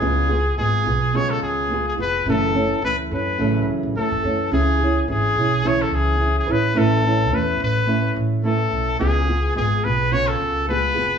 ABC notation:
X:1
M:4/4
L:1/16
Q:"Swing 16ths" 1/4=107
K:C#phr
V:1 name="Trumpet"
G4 G4 c A G3 G B2 | A4 B2 B4 z2 A4 | G4 G4 c A G3 G B2 | A4 B2 B4 z2 A4 |
G4 G2 B2 c A3 B4 |]
V:2 name="Nylon-string guitar"
[C,G,B,^EG]2 [B,EG]2 [G,B,EG]2 [B,EG]2 [C,G,B,EG]4 [G,B,EG]2 [B,EG]2 | [F,,C,E,A,CA]2 [E,A,CA]2 [E,A,CA]2 [E,A,CA]2 [F,,C,E,A,CA]4 [E,A,CA]2 [E,A,CA]2 | [C,E,CEG]2 [CEG]2 [E,CEG]2 [CEG]2 [C,E,CEG]4 [E,CEG]2 [CEB]2 | [A,CEB]2 [CEB]2 [A,CEB]4 [A,CEB]4 [A,CEB]4 |
[C,G,B,^EG]2 [B,EG]2 [G,B,EG]2 [B,EG]2 [C,B,E]4 [G,B,EG]2 [B,EG]2 |]
V:3 name="Upright bass" clef=bass
C,,4 G,,,2 B,,,4 C,,4 ^E,,,2 | F,,,4 C,,2 F,,2 A,,,2 z A,,, z F,,, F,,2 | C,,4 G,,,2 B,,,4 C,,4 A,,,2 | A,,,4 E,,2 A,,,4 A,,,4 B,,,2 |
C,,4 G,,,2 B,,,4 C,,4 ^E,,,2 |]